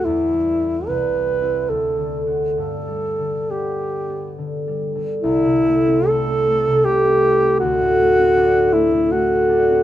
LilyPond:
<<
  \new Staff \with { instrumentName = "Alto saxophone" } { \time 3/4 \key a \dorian \tempo 4 = 73 e'4 b'4 a'8 r8 | a'4 g'4 r4 | e'4 a'4 g'4 | fis'4. e'8 fis'4 | }
  \new Staff \with { instrumentName = "Harp" } { \time 3/4 \key a \dorian \tuplet 3/2 { e,8 g8 <b e'>8 c,8 g8 <c' e'>8 d,8 d8 <c' fis'>8 } | \tuplet 3/2 { g,8 g8 d8 b8 g'8 b8 d8 g8 d8 } | c,16 c16 a16 c'16 e'16 c'16 a16 c16 a16 c'16 e'16 c'16 | d,16 a,16 a16 c'16 d'16 c'16 a16 a,16 a16 c'16 d'16 c'16 | }
>>